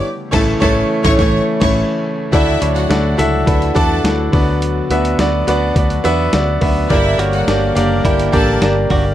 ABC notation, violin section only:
X:1
M:4/4
L:1/16
Q:1/4=105
K:D
V:1 name="Violin section"
z2 [Aa]2 [Aa]2 z [cc'] [cc']2 z [cc']2 z3 | [Ee]3 [Ff]3 z2 [Ee]2 [Aa]2 z4 | z16 | [Ee]3 [Ff]3 z2 [Gg]2 [Aa]2 z4 |]